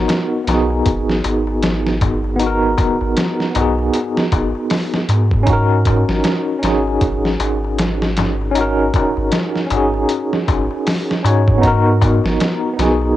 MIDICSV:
0, 0, Header, 1, 5, 480
1, 0, Start_track
1, 0, Key_signature, 5, "minor"
1, 0, Tempo, 769231
1, 1497, Time_signature, 4, 2, 24, 8
1, 8217, End_track
2, 0, Start_track
2, 0, Title_t, "Tine electric piano"
2, 0, Program_c, 0, 4
2, 0, Control_c, 0, 64, 127
2, 0, Note_on_c, 0, 59, 86
2, 0, Note_on_c, 0, 63, 76
2, 0, Note_on_c, 0, 66, 79
2, 0, Note_on_c, 0, 70, 94
2, 256, Note_off_c, 0, 59, 0
2, 267, Note_off_c, 0, 63, 0
2, 275, Note_on_c, 0, 59, 71
2, 277, Note_off_c, 0, 66, 0
2, 287, Note_off_c, 0, 70, 0
2, 296, Note_on_c, 0, 63, 67
2, 316, Note_on_c, 0, 66, 63
2, 336, Note_on_c, 0, 68, 75
2, 1463, Note_off_c, 0, 59, 0
2, 1473, Note_off_c, 0, 63, 0
2, 1474, Note_on_c, 0, 59, 82
2, 1483, Note_off_c, 0, 66, 0
2, 1493, Note_off_c, 0, 68, 0
2, 1495, Note_on_c, 0, 63, 78
2, 1516, Note_on_c, 0, 66, 78
2, 1539, Note_on_c, 0, 70, 94
2, 2182, Note_off_c, 0, 59, 0
2, 2189, Note_on_c, 0, 59, 70
2, 2193, Note_off_c, 0, 63, 0
2, 2203, Note_off_c, 0, 66, 0
2, 2211, Note_on_c, 0, 63, 70
2, 2214, Note_off_c, 0, 70, 0
2, 2230, Note_on_c, 0, 66, 67
2, 2251, Note_on_c, 0, 68, 85
2, 3380, Note_off_c, 0, 59, 0
2, 3390, Note_on_c, 0, 61, 88
2, 3391, Note_off_c, 0, 63, 0
2, 3400, Note_off_c, 0, 66, 0
2, 3406, Note_on_c, 0, 63, 76
2, 3410, Note_off_c, 0, 68, 0
2, 3426, Control_c, 0, 64, 0
2, 3428, Note_on_c, 0, 66, 78
2, 3450, Note_on_c, 0, 70, 100
2, 3543, Control_c, 0, 64, 127
2, 4100, Note_off_c, 0, 61, 0
2, 4108, Note_off_c, 0, 63, 0
2, 4112, Note_on_c, 0, 61, 75
2, 4119, Note_off_c, 0, 66, 0
2, 4129, Note_on_c, 0, 63, 66
2, 4130, Note_off_c, 0, 70, 0
2, 4148, Note_on_c, 0, 66, 64
2, 4169, Note_on_c, 0, 68, 81
2, 5301, Note_off_c, 0, 61, 0
2, 5309, Note_off_c, 0, 63, 0
2, 5312, Note_on_c, 0, 61, 92
2, 5319, Note_off_c, 0, 66, 0
2, 5330, Note_off_c, 0, 68, 0
2, 5333, Note_on_c, 0, 63, 79
2, 5351, Note_on_c, 0, 66, 77
2, 5370, Note_on_c, 0, 70, 94
2, 6021, Note_off_c, 0, 61, 0
2, 6032, Note_off_c, 0, 63, 0
2, 6032, Note_on_c, 0, 61, 72
2, 6041, Note_off_c, 0, 66, 0
2, 6050, Note_off_c, 0, 70, 0
2, 6052, Note_on_c, 0, 63, 62
2, 6071, Note_on_c, 0, 66, 65
2, 6094, Note_on_c, 0, 68, 78
2, 6985, Note_off_c, 0, 61, 0
2, 6995, Note_off_c, 0, 63, 0
2, 7005, Note_off_c, 0, 66, 0
2, 7006, Note_on_c, 0, 61, 73
2, 7016, Note_off_c, 0, 68, 0
2, 7017, Note_on_c, 0, 63, 70
2, 7023, Note_on_c, 0, 66, 65
2, 7033, Note_on_c, 0, 73, 82
2, 7225, Note_on_c, 0, 59, 84
2, 7228, Note_off_c, 0, 61, 0
2, 7234, Note_off_c, 0, 63, 0
2, 7236, Note_off_c, 0, 66, 0
2, 7242, Note_off_c, 0, 73, 0
2, 7247, Note_on_c, 0, 63, 81
2, 7265, Note_on_c, 0, 66, 82
2, 7266, Control_c, 0, 64, 0
2, 7284, Note_on_c, 0, 70, 95
2, 7385, Control_c, 0, 64, 127
2, 7937, Note_off_c, 0, 59, 0
2, 7947, Note_on_c, 0, 59, 74
2, 7949, Note_off_c, 0, 63, 0
2, 7958, Note_off_c, 0, 66, 0
2, 7966, Note_on_c, 0, 63, 69
2, 7967, Note_off_c, 0, 70, 0
2, 7985, Note_on_c, 0, 66, 66
2, 8003, Note_on_c, 0, 68, 83
2, 8217, Note_off_c, 0, 59, 0
2, 8217, Note_off_c, 0, 63, 0
2, 8217, Note_off_c, 0, 66, 0
2, 8217, Note_off_c, 0, 68, 0
2, 8217, End_track
3, 0, Start_track
3, 0, Title_t, "Sub bass"
3, 0, Program_c, 1, 38
3, 294, Note_on_c, 1, 35, 99
3, 512, Note_off_c, 1, 35, 0
3, 536, Note_on_c, 1, 32, 86
3, 753, Note_off_c, 1, 32, 0
3, 777, Note_on_c, 1, 32, 100
3, 1718, Note_off_c, 1, 32, 0
3, 1877, Note_on_c, 1, 32, 99
3, 1964, Note_off_c, 1, 32, 0
3, 2217, Note_on_c, 1, 35, 105
3, 2434, Note_off_c, 1, 35, 0
3, 2697, Note_on_c, 1, 32, 99
3, 2822, Note_off_c, 1, 32, 0
3, 3174, Note_on_c, 1, 44, 95
3, 3770, Note_off_c, 1, 44, 0
3, 3798, Note_on_c, 1, 32, 104
3, 3885, Note_off_c, 1, 32, 0
3, 4137, Note_on_c, 1, 32, 101
3, 4353, Note_off_c, 1, 32, 0
3, 4377, Note_on_c, 1, 32, 90
3, 4593, Note_off_c, 1, 32, 0
3, 4615, Note_on_c, 1, 32, 100
3, 5557, Note_off_c, 1, 32, 0
3, 5723, Note_on_c, 1, 32, 103
3, 5807, Note_off_c, 1, 32, 0
3, 6056, Note_on_c, 1, 32, 105
3, 6273, Note_off_c, 1, 32, 0
3, 6539, Note_on_c, 1, 32, 103
3, 6663, Note_off_c, 1, 32, 0
3, 7016, Note_on_c, 1, 44, 95
3, 7611, Note_off_c, 1, 44, 0
3, 7639, Note_on_c, 1, 32, 104
3, 7725, Note_off_c, 1, 32, 0
3, 7977, Note_on_c, 1, 35, 100
3, 8194, Note_off_c, 1, 35, 0
3, 8217, End_track
4, 0, Start_track
4, 0, Title_t, "Darbuka"
4, 51, Note_on_c, 9, 63, 52
4, 113, Note_off_c, 9, 63, 0
4, 203, Note_on_c, 9, 63, 23
4, 266, Note_off_c, 9, 63, 0
4, 304, Note_on_c, 9, 63, 82
4, 366, Note_off_c, 9, 63, 0
4, 438, Note_on_c, 9, 63, 34
4, 500, Note_off_c, 9, 63, 0
4, 538, Note_on_c, 9, 63, 44
4, 600, Note_off_c, 9, 63, 0
4, 685, Note_on_c, 9, 63, 23
4, 747, Note_off_c, 9, 63, 0
4, 777, Note_on_c, 9, 63, 84
4, 839, Note_off_c, 9, 63, 0
4, 918, Note_on_c, 9, 63, 36
4, 981, Note_off_c, 9, 63, 0
4, 1023, Note_on_c, 9, 63, 48
4, 1085, Note_off_c, 9, 63, 0
4, 1161, Note_on_c, 9, 63, 22
4, 1224, Note_off_c, 9, 63, 0
4, 1260, Note_on_c, 9, 63, 80
4, 1262, Note_on_c, 9, 64, 70
4, 1323, Note_off_c, 9, 63, 0
4, 1324, Note_off_c, 9, 64, 0
4, 1399, Note_on_c, 9, 63, 33
4, 1462, Note_off_c, 9, 63, 0
4, 1493, Note_on_c, 9, 63, 50
4, 1556, Note_off_c, 9, 63, 0
4, 1640, Note_on_c, 9, 63, 27
4, 1703, Note_off_c, 9, 63, 0
4, 1733, Note_on_c, 9, 63, 86
4, 1795, Note_off_c, 9, 63, 0
4, 1878, Note_on_c, 9, 63, 40
4, 1941, Note_off_c, 9, 63, 0
4, 1978, Note_on_c, 9, 63, 47
4, 2040, Note_off_c, 9, 63, 0
4, 2121, Note_on_c, 9, 63, 25
4, 2183, Note_off_c, 9, 63, 0
4, 2221, Note_on_c, 9, 63, 95
4, 2221, Note_on_c, 9, 64, 56
4, 2283, Note_off_c, 9, 63, 0
4, 2283, Note_off_c, 9, 64, 0
4, 2363, Note_on_c, 9, 63, 36
4, 2425, Note_off_c, 9, 63, 0
4, 2466, Note_on_c, 9, 63, 56
4, 2529, Note_off_c, 9, 63, 0
4, 2603, Note_on_c, 9, 63, 28
4, 2666, Note_off_c, 9, 63, 0
4, 2699, Note_on_c, 9, 63, 92
4, 2761, Note_off_c, 9, 63, 0
4, 2840, Note_on_c, 9, 63, 37
4, 2902, Note_off_c, 9, 63, 0
4, 2939, Note_on_c, 9, 63, 56
4, 3002, Note_off_c, 9, 63, 0
4, 3083, Note_on_c, 9, 63, 26
4, 3145, Note_off_c, 9, 63, 0
4, 3180, Note_on_c, 9, 63, 76
4, 3243, Note_off_c, 9, 63, 0
4, 3329, Note_on_c, 9, 63, 37
4, 3391, Note_off_c, 9, 63, 0
4, 3418, Note_on_c, 9, 63, 51
4, 3480, Note_off_c, 9, 63, 0
4, 3563, Note_on_c, 9, 63, 29
4, 3626, Note_off_c, 9, 63, 0
4, 3663, Note_on_c, 9, 63, 85
4, 3725, Note_off_c, 9, 63, 0
4, 3803, Note_on_c, 9, 63, 39
4, 3865, Note_off_c, 9, 63, 0
4, 3905, Note_on_c, 9, 63, 50
4, 3967, Note_off_c, 9, 63, 0
4, 4045, Note_on_c, 9, 63, 26
4, 4107, Note_off_c, 9, 63, 0
4, 4149, Note_on_c, 9, 63, 89
4, 4211, Note_off_c, 9, 63, 0
4, 4289, Note_on_c, 9, 63, 32
4, 4352, Note_off_c, 9, 63, 0
4, 4382, Note_on_c, 9, 63, 54
4, 4445, Note_off_c, 9, 63, 0
4, 4523, Note_on_c, 9, 63, 25
4, 4585, Note_off_c, 9, 63, 0
4, 4619, Note_on_c, 9, 63, 87
4, 4681, Note_off_c, 9, 63, 0
4, 4770, Note_on_c, 9, 63, 35
4, 4833, Note_off_c, 9, 63, 0
4, 4858, Note_on_c, 9, 63, 47
4, 4921, Note_off_c, 9, 63, 0
4, 5008, Note_on_c, 9, 63, 22
4, 5070, Note_off_c, 9, 63, 0
4, 5108, Note_on_c, 9, 63, 90
4, 5109, Note_on_c, 9, 64, 63
4, 5171, Note_off_c, 9, 63, 0
4, 5171, Note_off_c, 9, 64, 0
4, 5250, Note_on_c, 9, 63, 36
4, 5312, Note_off_c, 9, 63, 0
4, 5352, Note_on_c, 9, 63, 56
4, 5414, Note_off_c, 9, 63, 0
4, 5485, Note_on_c, 9, 63, 25
4, 5548, Note_off_c, 9, 63, 0
4, 5590, Note_on_c, 9, 63, 78
4, 5652, Note_off_c, 9, 63, 0
4, 5722, Note_on_c, 9, 63, 32
4, 5784, Note_off_c, 9, 63, 0
4, 5821, Note_on_c, 9, 63, 52
4, 5884, Note_off_c, 9, 63, 0
4, 5963, Note_on_c, 9, 63, 25
4, 6025, Note_off_c, 9, 63, 0
4, 6057, Note_on_c, 9, 64, 57
4, 6058, Note_on_c, 9, 63, 89
4, 6119, Note_off_c, 9, 64, 0
4, 6121, Note_off_c, 9, 63, 0
4, 6201, Note_on_c, 9, 63, 35
4, 6264, Note_off_c, 9, 63, 0
4, 6297, Note_on_c, 9, 63, 47
4, 6359, Note_off_c, 9, 63, 0
4, 6445, Note_on_c, 9, 63, 25
4, 6508, Note_off_c, 9, 63, 0
4, 6541, Note_on_c, 9, 63, 99
4, 6604, Note_off_c, 9, 63, 0
4, 6681, Note_on_c, 9, 63, 36
4, 6744, Note_off_c, 9, 63, 0
4, 6782, Note_on_c, 9, 63, 51
4, 6844, Note_off_c, 9, 63, 0
4, 6920, Note_on_c, 9, 63, 25
4, 6983, Note_off_c, 9, 63, 0
4, 7017, Note_on_c, 9, 63, 83
4, 7079, Note_off_c, 9, 63, 0
4, 7164, Note_on_c, 9, 63, 38
4, 7227, Note_off_c, 9, 63, 0
4, 7263, Note_on_c, 9, 63, 53
4, 7326, Note_off_c, 9, 63, 0
4, 7401, Note_on_c, 9, 63, 27
4, 7464, Note_off_c, 9, 63, 0
4, 7497, Note_on_c, 9, 63, 89
4, 7559, Note_off_c, 9, 63, 0
4, 7638, Note_on_c, 9, 63, 39
4, 7701, Note_off_c, 9, 63, 0
4, 7746, Note_on_c, 9, 63, 48
4, 7808, Note_off_c, 9, 63, 0
4, 7884, Note_on_c, 9, 63, 21
4, 7946, Note_off_c, 9, 63, 0
4, 7984, Note_on_c, 9, 63, 83
4, 8046, Note_off_c, 9, 63, 0
4, 8121, Note_on_c, 9, 63, 36
4, 8183, Note_off_c, 9, 63, 0
4, 8217, End_track
5, 0, Start_track
5, 0, Title_t, "Drums"
5, 56, Note_on_c, 9, 42, 77
5, 62, Note_on_c, 9, 38, 108
5, 118, Note_off_c, 9, 42, 0
5, 124, Note_off_c, 9, 38, 0
5, 296, Note_on_c, 9, 42, 63
5, 301, Note_on_c, 9, 38, 49
5, 358, Note_off_c, 9, 42, 0
5, 364, Note_off_c, 9, 38, 0
5, 534, Note_on_c, 9, 42, 80
5, 536, Note_on_c, 9, 36, 97
5, 596, Note_off_c, 9, 42, 0
5, 598, Note_off_c, 9, 36, 0
5, 683, Note_on_c, 9, 38, 42
5, 746, Note_off_c, 9, 38, 0
5, 775, Note_on_c, 9, 42, 62
5, 838, Note_off_c, 9, 42, 0
5, 1014, Note_on_c, 9, 42, 82
5, 1020, Note_on_c, 9, 38, 112
5, 1077, Note_off_c, 9, 42, 0
5, 1082, Note_off_c, 9, 38, 0
5, 1164, Note_on_c, 9, 38, 47
5, 1226, Note_off_c, 9, 38, 0
5, 1255, Note_on_c, 9, 42, 63
5, 1256, Note_on_c, 9, 36, 90
5, 1318, Note_off_c, 9, 36, 0
5, 1318, Note_off_c, 9, 42, 0
5, 1495, Note_on_c, 9, 42, 85
5, 1557, Note_off_c, 9, 42, 0
5, 1736, Note_on_c, 9, 36, 90
5, 1736, Note_on_c, 9, 42, 61
5, 1798, Note_off_c, 9, 36, 0
5, 1799, Note_off_c, 9, 42, 0
5, 1975, Note_on_c, 9, 42, 82
5, 1981, Note_on_c, 9, 38, 99
5, 2037, Note_off_c, 9, 42, 0
5, 2043, Note_off_c, 9, 38, 0
5, 2122, Note_on_c, 9, 38, 35
5, 2185, Note_off_c, 9, 38, 0
5, 2215, Note_on_c, 9, 42, 67
5, 2277, Note_off_c, 9, 42, 0
5, 2456, Note_on_c, 9, 42, 76
5, 2518, Note_off_c, 9, 42, 0
5, 2604, Note_on_c, 9, 38, 55
5, 2666, Note_off_c, 9, 38, 0
5, 2695, Note_on_c, 9, 42, 58
5, 2696, Note_on_c, 9, 36, 85
5, 2757, Note_off_c, 9, 42, 0
5, 2758, Note_off_c, 9, 36, 0
5, 2933, Note_on_c, 9, 46, 76
5, 2938, Note_on_c, 9, 38, 115
5, 2995, Note_off_c, 9, 46, 0
5, 3001, Note_off_c, 9, 38, 0
5, 3080, Note_on_c, 9, 38, 50
5, 3143, Note_off_c, 9, 38, 0
5, 3175, Note_on_c, 9, 42, 62
5, 3237, Note_off_c, 9, 42, 0
5, 3316, Note_on_c, 9, 36, 92
5, 3379, Note_off_c, 9, 36, 0
5, 3412, Note_on_c, 9, 42, 83
5, 3415, Note_on_c, 9, 36, 105
5, 3475, Note_off_c, 9, 42, 0
5, 3477, Note_off_c, 9, 36, 0
5, 3653, Note_on_c, 9, 42, 64
5, 3655, Note_on_c, 9, 36, 87
5, 3715, Note_off_c, 9, 42, 0
5, 3718, Note_off_c, 9, 36, 0
5, 3800, Note_on_c, 9, 38, 46
5, 3862, Note_off_c, 9, 38, 0
5, 3894, Note_on_c, 9, 42, 81
5, 3899, Note_on_c, 9, 38, 106
5, 3956, Note_off_c, 9, 42, 0
5, 3962, Note_off_c, 9, 38, 0
5, 4136, Note_on_c, 9, 42, 66
5, 4142, Note_on_c, 9, 38, 52
5, 4199, Note_off_c, 9, 42, 0
5, 4204, Note_off_c, 9, 38, 0
5, 4375, Note_on_c, 9, 42, 77
5, 4376, Note_on_c, 9, 36, 95
5, 4438, Note_off_c, 9, 42, 0
5, 4439, Note_off_c, 9, 36, 0
5, 4525, Note_on_c, 9, 38, 40
5, 4587, Note_off_c, 9, 38, 0
5, 4617, Note_on_c, 9, 42, 64
5, 4679, Note_off_c, 9, 42, 0
5, 4858, Note_on_c, 9, 42, 85
5, 4863, Note_on_c, 9, 38, 115
5, 4920, Note_off_c, 9, 42, 0
5, 4926, Note_off_c, 9, 38, 0
5, 5005, Note_on_c, 9, 38, 49
5, 5067, Note_off_c, 9, 38, 0
5, 5096, Note_on_c, 9, 42, 75
5, 5101, Note_on_c, 9, 38, 93
5, 5158, Note_off_c, 9, 42, 0
5, 5164, Note_off_c, 9, 38, 0
5, 5337, Note_on_c, 9, 42, 77
5, 5400, Note_off_c, 9, 42, 0
5, 5577, Note_on_c, 9, 42, 63
5, 5578, Note_on_c, 9, 36, 92
5, 5639, Note_off_c, 9, 42, 0
5, 5640, Note_off_c, 9, 36, 0
5, 5813, Note_on_c, 9, 42, 75
5, 5819, Note_on_c, 9, 38, 102
5, 5876, Note_off_c, 9, 42, 0
5, 5882, Note_off_c, 9, 38, 0
5, 5962, Note_on_c, 9, 38, 33
5, 6025, Note_off_c, 9, 38, 0
5, 6055, Note_on_c, 9, 42, 61
5, 6118, Note_off_c, 9, 42, 0
5, 6295, Note_on_c, 9, 42, 73
5, 6357, Note_off_c, 9, 42, 0
5, 6445, Note_on_c, 9, 38, 55
5, 6508, Note_off_c, 9, 38, 0
5, 6539, Note_on_c, 9, 36, 89
5, 6539, Note_on_c, 9, 42, 58
5, 6601, Note_off_c, 9, 36, 0
5, 6601, Note_off_c, 9, 42, 0
5, 6780, Note_on_c, 9, 46, 78
5, 6785, Note_on_c, 9, 38, 106
5, 6842, Note_off_c, 9, 46, 0
5, 6848, Note_off_c, 9, 38, 0
5, 6931, Note_on_c, 9, 38, 50
5, 6994, Note_off_c, 9, 38, 0
5, 7023, Note_on_c, 9, 42, 64
5, 7086, Note_off_c, 9, 42, 0
5, 7162, Note_on_c, 9, 36, 95
5, 7224, Note_off_c, 9, 36, 0
5, 7260, Note_on_c, 9, 36, 100
5, 7260, Note_on_c, 9, 42, 80
5, 7322, Note_off_c, 9, 36, 0
5, 7322, Note_off_c, 9, 42, 0
5, 7499, Note_on_c, 9, 36, 88
5, 7501, Note_on_c, 9, 42, 64
5, 7562, Note_off_c, 9, 36, 0
5, 7564, Note_off_c, 9, 42, 0
5, 7647, Note_on_c, 9, 38, 50
5, 7710, Note_off_c, 9, 38, 0
5, 7739, Note_on_c, 9, 42, 82
5, 7745, Note_on_c, 9, 38, 112
5, 7802, Note_off_c, 9, 42, 0
5, 7807, Note_off_c, 9, 38, 0
5, 7981, Note_on_c, 9, 42, 64
5, 7986, Note_on_c, 9, 38, 49
5, 8043, Note_off_c, 9, 42, 0
5, 8049, Note_off_c, 9, 38, 0
5, 8217, End_track
0, 0, End_of_file